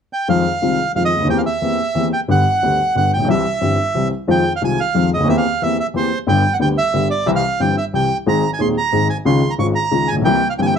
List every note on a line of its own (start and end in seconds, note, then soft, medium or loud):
0.13 0.28 G5 medium
0.28 0.43 F2 soft
0.28 0.43 D#3 soft
0.28 0.43 F3 soft
0.28 0.43 G#3 soft
0.28 0.43 C4 soft
0.28 0.43 F4 soft
0.28 0.92 F5 medium
0.62 0.76 C2 soft
0.62 0.76 C3 soft
0.62 0.76 D#3 soft
0.62 0.76 G#3 soft
0.62 0.76 C4 soft
0.62 0.76 F4 soft
0.96 1.10 F2 soft
0.96 1.10 D#3 soft
0.96 1.10 F3 soft
0.96 1.10 G#3 soft
0.96 1.10 C4 soft
0.96 1.10 F4 soft
0.96 1.03 F5 medium
1.05 1.28 D#5 medium
1.17 1.21 C#2 soft
1.17 1.25 D2 soft
1.25 1.29 D#2 soft
1.25 1.43 E3 medium
1.25 1.43 A#3 soft
1.25 1.43 C4 soft
1.29 1.43 E2 medium
1.29 1.43 G4 soft
1.29 1.38 G5 medium
1.38 1.41 F5 medium
1.46 2.08 E5 medium
1.61 1.76 E2 soft
1.61 1.76 E3 soft
1.61 1.76 A#3 soft
1.61 1.76 C4 soft
1.61 1.76 G4 soft
1.95 2.09 E2 soft
1.95 2.09 E3 soft
1.95 2.09 A#3 soft
1.95 2.09 C4 soft
1.95 2.09 G4 soft
2.13 2.20 G5 medium
2.28 2.43 G1 medium
2.28 2.42 G2 medium
2.28 2.42 D3 soft
2.28 2.43 G3 soft
2.28 2.42 B3 soft
2.28 2.43 G4 medium
2.28 2.96 F#5 medium
2.63 2.76 D2 soft
2.63 2.76 D3 soft
2.63 2.76 G3 soft
2.63 2.76 B3 soft
2.63 2.76 G4 soft
2.95 3.09 G1 soft
2.95 3.09 G2 soft
2.95 3.09 D3 soft
2.95 3.09 G3 soft
2.95 3.09 B3 soft
2.95 3.09 G4 soft
2.95 3.12 F#5 medium
3.13 3.20 A1 soft
3.13 3.28 G5 medium
3.20 3.24 A#1 soft
3.24 3.28 B1 medium
3.24 3.42 C2 medium
3.24 3.42 C3 medium
3.24 3.42 E3 soft
3.24 3.42 G3 soft
3.24 3.42 C4 soft
3.29 3.42 G4 medium
3.29 4.08 E5 medium
3.61 3.75 G1 soft
3.61 3.75 G2 soft
3.61 3.75 E3 soft
3.61 3.75 G3 soft
3.61 3.75 C4 soft
3.61 3.75 G4 soft
3.94 4.09 C2 soft
3.94 4.09 C3 soft
3.94 4.09 E3 soft
3.94 4.09 G3 soft
3.94 4.09 C4 soft
3.94 4.09 G4 soft
4.28 4.42 F2 medium
4.28 4.42 D#3 soft
4.28 4.42 F3 medium
4.28 4.42 G#3 soft
4.28 4.42 C4 soft
4.28 4.42 F4 medium
4.28 4.53 G5 medium
4.56 4.62 F5 soft
4.61 4.76 C2 soft
4.61 4.75 C3 soft
4.61 4.75 D#3 soft
4.61 4.76 G#3 soft
4.61 4.76 C4 soft
4.61 4.76 F4 soft
4.61 4.80 G#5 medium
4.80 5.10 F5 medium
4.94 5.09 F2 soft
4.94 5.08 D#3 soft
4.94 5.09 F3 soft
4.94 5.09 G#3 soft
4.94 5.09 C4 soft
4.94 5.09 F4 soft
5.14 5.20 C#2 soft
5.14 5.28 D#5 medium
5.20 5.24 D2 soft
5.20 5.28 D#2 medium
5.28 5.42 E2 medium
5.28 5.42 E3 medium
5.28 5.42 A#3 soft
5.28 5.42 C4 soft
5.28 5.42 G4 medium
5.28 5.36 E5 medium
5.37 5.62 F5 medium
5.62 5.76 E2 soft
5.62 5.75 E3 soft
5.62 5.75 A#3 soft
5.62 5.76 C4 soft
5.62 5.76 G4 soft
5.62 5.77 E5 medium
5.80 5.87 E5 medium
5.94 6.08 E2 soft
5.94 6.08 E3 soft
5.94 6.08 A#3 soft
5.94 6.08 C4 soft
5.94 6.08 G4 soft
5.94 6.19 C5 medium
6.27 6.41 G1 medium
6.27 6.41 G2 medium
6.27 6.41 D3 medium
6.27 6.41 G3 soft
6.27 6.41 B3 soft
6.27 6.41 G4 medium
6.27 6.53 G5 medium
6.54 6.57 F#5 medium
6.60 6.74 D2 soft
6.60 6.74 D3 soft
6.60 6.74 G3 soft
6.60 6.74 B3 soft
6.60 6.74 G4 soft
6.60 6.69 G5 medium
6.78 7.08 E5 medium
6.93 7.07 G1 soft
6.93 7.07 G2 soft
6.93 7.07 D3 soft
6.93 7.07 G3 soft
6.93 7.07 B3 soft
6.93 7.07 G4 soft
7.11 7.27 D5 medium
7.26 7.40 C2 medium
7.26 7.40 C3 medium
7.26 7.40 E3 medium
7.26 7.41 G3 soft
7.26 7.41 C4 soft
7.26 7.41 G4 medium
7.26 7.31 E5 medium
7.35 7.61 F5 medium
7.60 7.74 G1 soft
7.60 7.74 G2 soft
7.60 7.74 E3 soft
7.60 7.74 G3 soft
7.60 7.74 C4 soft
7.60 7.74 G4 soft
7.60 7.76 G5 medium
7.78 7.85 E5 medium
7.93 8.07 C2 soft
7.93 8.07 C3 soft
7.93 8.07 E3 soft
7.93 8.07 G3 soft
7.93 8.07 C4 soft
7.93 8.08 G4 soft
7.93 8.17 G5 medium
8.26 8.41 G#1 medium
8.26 8.41 G#2 medium
8.26 8.40 D#3 soft
8.26 8.40 G#3 soft
8.26 8.41 C4 soft
8.26 8.41 G#4 medium
8.26 8.51 A#5 medium
8.53 8.61 G#5 medium
8.59 8.73 D#1 soft
8.59 8.73 D#2 soft
8.59 8.73 D#3 soft
8.59 8.73 G#3 soft
8.59 8.73 C4 soft
8.59 8.74 G#4 soft
8.59 8.68 C6 medium
8.78 9.08 A#5 medium
8.92 9.07 G#1 soft
8.92 9.06 G#2 soft
8.92 9.06 D#3 soft
8.92 9.06 G#3 soft
8.92 9.07 C4 soft
8.92 9.07 G#4 soft
9.10 9.17 G#5 medium
9.25 9.40 C#2 medium
9.25 9.40 C#3 medium
9.25 9.39 D#3 medium
9.25 9.40 G#3 soft
9.25 9.40 C#4 soft
9.25 9.40 F4 medium
9.25 9.52 C6 medium
9.50 9.54 A#5 medium
9.58 9.73 G#1 soft
9.58 9.73 G#2 soft
9.58 9.73 D#3 soft
9.58 9.73 G#3 soft
9.58 9.73 C#4 soft
9.58 9.73 F4 soft
9.58 9.67 C#6 medium
9.75 10.09 A#5 medium
9.91 10.06 C#2 soft
9.91 10.06 C#3 soft
9.91 10.05 D#3 soft
9.91 10.06 G#3 soft
9.91 10.06 C#4 soft
9.91 10.06 F4 soft
10.08 10.15 G#5 medium
10.12 10.17 A1 soft
10.16 10.21 A#1 medium
10.22 10.25 B1 medium
10.22 10.39 C2 medium
10.22 10.39 C3 medium
10.22 10.39 E3 medium
10.22 10.39 A#3 soft
10.22 10.39 C4 soft
10.22 10.39 G4 medium
10.22 10.48 G5 medium
10.50 10.54 F5 medium
10.58 10.72 G1 soft
10.58 10.72 G2 soft
10.58 10.72 E3 soft
10.58 10.72 A#3 soft
10.58 10.73 C4 soft
10.58 10.73 G4 soft
10.58 10.60 G5 medium
10.58 10.67 G#5 medium
10.67 10.74 G5 medium